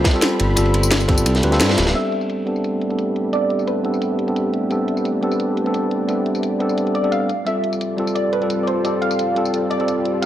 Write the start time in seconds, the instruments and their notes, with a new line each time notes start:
Already playing: tine electric piano G3 C4 F4 A4, analog synth pad F4 C5 B5, synth pluck D5
0.04 kick, snare, closed hi-hat, ride
0.13 tine electric piano G3 C4 F4 A4, ride
0.22 snare, closed hi-hat, ride, tambourine
0.39 analog synth bass G1, closed hi-hat, ride
0.56 analog synth bass G1, tine electric piano G3 C4 F4 A4, closed hi-hat, ride, tambourine
0.65 ride
0.74 closed hi-hat, ride
0.83 tambourine
0.91 snare, closed hi-hat, ride, tambourine
1.00 ride, tambourine
1.08 tine electric piano G3 C4 F4 A4, kick, snare, closed hi-hat, ride
1.18 tambourine
1.26 analog synth bass C2, closed hi-hat, ride, tambourine
1.35 snare, closed hi-hat
1.43 analog synth bass D2, tine electric piano G3 C4 F4 B4, closed hi-hat, ride
1.51 tine electric piano G3 C4 F4 A4, snare, closed hi-hat
1.59 analog synth bass G2, tine electric piano G3 C4 F4 C5, snare, closed hi-hat, ride, tambourine
1.69 snare, ride
1.78 analog synth bass D1, snare, closed hi-hat, ride, tambourine
1.87 snare, ride
1.93 tine electric piano G3 B3 C4 D4 A4, analog synth pad A3 G4 B4 D5 E5, synth pluck E5, closed hi-hat, crash, tambourine
2.12 closed hi-hat
2.21 tambourine
2.30 closed hi-hat, tambourine
2.45 tine electric piano G3 B3 C4 D4 A4, closed hi-hat
2.56 tambourine
2.64 closed hi-hat, tambourine
2.81 closed hi-hat
2.89 tine electric piano G3 B3 C4 D4 A4, closed hi-hat
2.99 closed hi-hat, tambourine
3.16 closed hi-hat
3.31 tine electric piano G3 B3 C4 D4 A4, synth pluck D5, closed hi-hat, tambourine
3.50 closed hi-hat
3.59 tambourine
3.67 synth pluck B4, closed hi-hat, tambourine
3.83 tine electric piano G3 B3 C4 D4 A4, closed hi-hat
3.94 tambourine
4.02 closed hi-hat, tambourine
4.19 closed hi-hat
4.27 tine electric piano G3 B3 C4 D4 A4, closed hi-hat
4.36 closed hi-hat, tambourine
4.54 closed hi-hat
4.69 tine electric piano G3 B3 C4 D4 A4, closed hi-hat, tambourine
4.88 closed hi-hat
4.97 tambourine
5.05 closed hi-hat, tambourine
5.21 tine electric piano G3 B3 C4 D4 A4, closed hi-hat
5.32 tambourine
5.40 closed hi-hat, tambourine
5.57 closed hi-hat
5.64 tine electric piano G3 B3 C4 D4 A4, closed hi-hat
5.74 closed hi-hat, tambourine
5.91 closed hi-hat
6.07 tine electric piano G3 B3 C4 D4 A4, closed hi-hat, tambourine
6.26 closed hi-hat
6.35 tambourine
6.43 closed hi-hat, tambourine
6.59 tine electric piano G3 B3 C4 D4 A4, closed hi-hat
6.69 tambourine
6.78 closed hi-hat, tambourine
6.87 closed hi-hat
6.95 synth pluck D5, closed hi-hat
7.03 tine electric piano G3 B3 C4 D4 A4, closed hi-hat
7.12 synth pluck F5, closed hi-hat, tambourine
7.29 analog synth pad G3 C4 F4 A4, closed hi-hat, tambourine
7.45 tine electric piano G3 C4 F4 A4, synth pluck E5, closed hi-hat, tambourine
7.64 closed hi-hat
7.73 tambourine
7.81 closed hi-hat, tambourine
7.97 tine electric piano G3 C4 F4 A4, closed hi-hat
8.07 tambourine
8.15 synth pluck D5, closed hi-hat, tambourine
8.33 synth pluck B4, closed hi-hat
8.40 tine electric piano G3 C4 F4 A4, closed hi-hat
8.50 closed hi-hat, tambourine
8.63 synth pluck D5
8.67 synth pluck C5, closed hi-hat
8.83 tine electric piano G3 C4 F4 A4, synth pluck D5, closed hi-hat, tambourine
9.02 synth pluck F5, closed hi-hat
9.11 tambourine
9.19 closed hi-hat, tambourine
9.35 tine electric piano G3 C4 F4 A4, closed hi-hat
9.45 tambourine
9.54 closed hi-hat, tambourine
9.70 synth pluck D5, closed hi-hat
9.78 tine electric piano G3 C4 F4 A4, closed hi-hat
9.88 closed hi-hat, tambourine
10.05 closed hi-hat
10.21 tine electric piano G3 C4, synth pluck F5, closed hi-hat, tambourine